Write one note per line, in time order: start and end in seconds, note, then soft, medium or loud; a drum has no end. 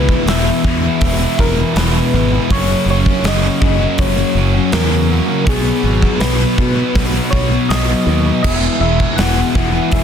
0.00 0.12 C#2 medium
0.00 0.25 E2 medium
0.00 0.27 E2 medium
0.00 0.61 E2 medium
0.00 0.25 B2 loud
0.00 0.28 B2 medium
0.00 0.62 B2 loud
0.00 0.26 E3 medium
0.00 0.63 E3 loud
0.00 0.27 G#3 medium
0.00 0.27 B3 medium
0.00 0.28 E4 medium
0.00 0.30 B4 loud
0.09 kick medium
0.26 0.50 E1 loud
0.26 0.82 E2 medium
0.26 0.83 B2 medium
0.26 0.47 E3 medium
0.26 0.46 G#3 medium
0.26 0.45 B3 loud
0.26 0.44 E4 loud
0.26 1.42 E5 loud
0.26 snare loud
0.26 open hi-hat medium
0.45 0.64 E3 medium
0.45 0.64 G#3 medium
0.45 0.65 B3 medium
0.45 0.65 E4 medium
0.64 0.88 E2 medium
0.64 1.21 E2 medium
0.64 2.49 E2 medium
0.64 2.48 B2 medium
0.64 0.87 B2 medium
0.64 2.48 E3 loud
0.64 muted overdriven electric guitar stroke medium
0.64 kick medium
0.69 0.86 E3 medium
0.83 1.39 E3 medium
0.83 1.40 G#3 medium
0.83 1.41 B3 medium
0.83 1.41 E4 medium
0.83 muted distorted electric guitar stroke medium
1.01 1.25 E1 loud
1.01 kick loud
1.01 open hi-hat medium
1.22 1.41 B2 medium
1.22 1.42 E3 medium
1.39 1.63 E1 medium
1.39 1.77 E2 medium
1.39 1.60 B2 medium
1.39 1.61 E3 medium
1.39 1.61 G#3 medium
1.39 1.59 B3 medium
1.39 1.58 E4 medium
1.39 1.78 A#4 loud
1.39 kick medium
1.60 1.77 E3 medium
1.60 1.78 G#3 medium
1.60 1.77 B3 medium
1.60 1.78 E4 medium
1.60 muted distorted electric guitar stroke medium
1.76 1.99 E1 loud
1.76 2.32 E2 medium
1.76 2.32 B2 medium
1.76 1.97 E3 medium
1.76 1.96 G#3 medium
1.76 1.95 B3 medium
1.76 1.94 E4 loud
1.76 2.50 B4 loud
1.76 snare loud
1.76 open hi-hat medium
1.95 2.13 E3 medium
1.95 2.14 G#3 medium
1.95 2.14 B3 medium
1.95 2.15 E4 medium
2.14 2.37 G#1 loud
2.14 2.48 E2 medium
2.14 2.33 B2 medium
2.14 2.34 E3 medium
2.14 2.33 G#3 medium
2.14 2.33 B3 medium
2.14 2.32 E4 medium
2.33 2.49 B2 medium
2.33 2.50 E3 medium
2.33 2.49 G#3 medium
2.33 2.49 B3 medium
2.33 2.48 E4 medium
2.50 2.74 F#1 loud
2.50 3.23 F#2 loud
2.50 3.59 F#2 loud
2.50 3.24 C#3 loud
2.50 3.60 C#3 loud
2.50 2.88 F#3 loud
2.50 3.61 F#3 loud
2.50 2.88 A#3 loud
2.50 2.89 C#4 loud
2.50 2.90 F#4 loud
2.50 2.85 C#5 loud
2.50 kick loud
2.50 open hi-hat medium
2.86 3.10 F#1 loud
2.86 3.23 F#2 medium
2.86 3.24 C#3 medium
2.86 3.25 F#3 medium
2.86 3.25 A#3 medium
2.90 3.25 C#4 medium
2.90 3.26 F#4 medium
2.90 3.29 C#5 loud
3.06 kick medium
3.24 3.47 F#1 loud
3.24 3.80 F#2 medium
3.24 3.80 C#3 medium
3.24 3.44 F#3 loud
3.24 3.43 A#3 medium
3.24 3.43 C#4 loud
3.24 3.42 F#4 loud
3.24 snare loud
3.24 open hi-hat medium
3.28 4.01 D#5 loud
3.42 3.60 F#3 medium
3.42 3.61 A#3 medium
3.42 3.60 C#4 medium
3.42 3.61 F#4 medium
3.61 3.86 F#1 medium
3.61 4.17 F#2 medium
3.61 5.46 F#2 medium
3.61 3.80 C#3 medium
3.61 5.46 C#3 medium
3.61 5.45 F#3 loud
3.61 3.80 F#3 medium
3.61 muted overdriven electric guitar stroke medium
3.61 kick medium
3.79 4.35 F#3 medium
3.79 4.36 A#3 medium
3.79 4.37 C#4 medium
3.79 4.38 F#4 medium
3.79 muted distorted electric guitar stroke medium
3.98 4.22 F#1 medium
3.98 4.74 C#5 loud
3.98 kick loud
3.98 open hi-hat medium
4.18 4.36 C#3 medium
4.18 4.38 F#3 medium
4.35 4.59 F#1 medium
4.35 4.72 F#2 medium
4.35 4.54 C#3 medium
4.35 4.55 F#3 medium
4.35 4.55 A#3 medium
4.35 4.54 C#4 medium
4.39 4.52 F#4 medium
4.53 4.73 F#3 medium
4.53 4.73 A#3 medium
4.53 4.74 C#4 medium
4.53 4.74 F#4 medium
4.53 muted distorted electric guitar stroke soft
4.72 5.20 E2 medium
4.72 5.28 F#2 medium
4.72 5.29 C#3 medium
4.72 4.93 F#3 medium
4.72 4.92 A#3 medium
4.72 4.91 C#4 medium
4.72 4.91 F#4 medium
4.72 5.47 A#4 loud
4.72 snare loud
4.72 open hi-hat medium
4.92 5.07 F#3 medium
4.92 5.08 A#3 medium
4.92 5.09 C#4 medium
4.92 5.10 F#4 medium
5.08 5.44 F#2 medium
5.08 5.30 C#3 medium
5.08 5.28 F#3 medium
5.08 5.27 A#3 medium
5.08 5.27 C#4 medium
5.08 5.25 F#4 medium
5.12 5.27 F#3 medium
5.27 5.44 F#3 medium
5.27 5.45 A#3 medium
5.27 5.44 C#4 medium
5.27 5.44 F#4 medium
5.31 5.46 C#3 medium
5.44 5.70 B1 medium
5.44 6.17 B2 loud
5.44 6.56 B2 medium
5.44 5.81 F#3 loud
5.44 6.56 F#3 medium
5.44 5.83 B3 loud
5.44 5.83 D#4 loud
5.44 5.84 F#4 loud
5.44 kick loud
5.44 open hi-hat medium
5.49 6.56 B3 loud
5.49 6.22 G#4 loud
5.82 6.07 G#1 loud
5.82 6.19 B2 medium
5.82 6.19 F#3 medium
5.82 6.20 B3 medium
5.82 6.19 D#4 medium
5.82 6.20 F#4 medium
6.02 kick medium
6.18 6.44 B1 loud
6.18 6.75 B2 medium
6.18 6.56 F#3 medium
6.18 6.40 B3 loud
6.18 6.38 D#4 medium
6.18 6.36 F#4 loud
6.18 7.32 B4 medium
6.18 snare loud
6.18 open hi-hat medium
6.38 6.57 B3 medium
6.38 6.57 D#4 medium
6.38 6.57 F#4 medium
6.57 7.13 B2 medium
6.57 6.82 B2 medium
6.57 8.42 B2 medium
6.57 8.41 F#3 medium
6.57 6.77 F#3 medium
6.57 10.04 B3 medium
6.57 6.76 B3 medium
6.57 muted overdriven electric guitar stroke soft
6.57 kick loud
6.75 7.31 B3 medium
6.75 7.32 D#4 medium
6.75 7.32 F#4 medium
6.75 muted distorted electric guitar stroke medium
6.95 7.18 B1 loud
6.95 kick loud
6.95 open hi-hat medium
7.13 7.34 B3 medium
7.17 7.33 F#3 medium
7.30 7.56 B1 medium
7.30 7.68 B2 medium
7.30 7.69 F#3 medium
7.30 7.52 B3 medium
7.30 7.50 D#4 medium
7.30 7.49 F#4 medium
7.30 7.71 C#5 loud
7.30 kick medium
7.50 7.70 B3 medium
7.50 7.70 D#4 medium
7.50 7.70 F#4 medium
7.50 muted distorted electric guitar stroke medium
7.69 7.93 B1 medium
7.69 8.25 B2 medium
7.69 8.05 F#3 medium
7.69 7.90 B3 medium
7.69 7.88 D#4 medium
7.69 7.87 F#4 medium
7.69 8.44 D#5 loud
7.69 snare loud
7.69 open hi-hat medium
7.88 8.07 B3 medium
7.88 8.07 D#4 medium
7.88 8.07 F#4 medium
8.06 8.30 D#2 medium
8.06 8.41 B2 medium
8.06 8.41 F#3 medium
8.06 8.27 B3 medium
8.06 8.25 D#4 medium
8.06 8.24 F#4 medium
8.25 8.42 F#3 medium
8.25 8.46 B3 medium
8.25 8.42 D#4 medium
8.25 8.41 F#4 medium
8.43 8.67 E1 medium
8.43 9.57 E2 medium
8.43 9.18 E2 loud
8.43 9.17 B2 loud
8.43 9.53 B2 loud
8.43 8.81 E3 loud
8.43 8.82 G#3 loud
8.43 8.80 E5 loud
8.43 kick loud
8.43 crash loud
8.47 9.55 E3 loud
8.47 8.83 B3 loud
8.47 8.83 G#4 loud
8.78 9.04 E1 loud
8.78 9.15 E2 medium
8.78 9.16 B2 medium
8.78 9.19 E3 medium
8.78 9.18 E5 loud
8.82 9.19 G#3 medium
8.82 9.20 B3 medium
8.82 9.20 G#4 medium
9.00 kick medium
9.17 9.42 E1 medium
9.17 10.04 E2 medium
9.17 9.74 B2 medium
9.17 9.40 E3 medium
9.17 9.39 G#3 medium
9.17 9.38 B3 medium
9.17 9.94 F#5 loud
9.17 snare loud
9.17 open hi-hat medium
9.21 9.37 G#4 medium
9.37 9.55 E3 medium
9.37 9.55 G#3 medium
9.37 9.56 B3 medium
9.37 9.55 G#4 medium
9.52 9.79 E1 medium
9.52 10.04 E2 medium
9.52 9.70 B2 medium
9.52 10.04 B2 medium
9.52 9.69 E3 medium
9.52 10.04 E3 medium
9.52 10.04 E4 medium
9.52 muted overdriven electric guitar stroke medium
9.52 kick medium
9.58 10.04 E2 medium
9.70 10.04 G#4 medium
9.70 muted distorted electric guitar stroke medium
9.75 10.04 E3 medium
9.75 10.04 G#3 medium
9.75 10.04 B3 medium
9.91 10.04 E1 medium
9.91 10.04 G#4 medium
9.91 10.04 E5 loud
9.91 kick loud
9.91 open hi-hat medium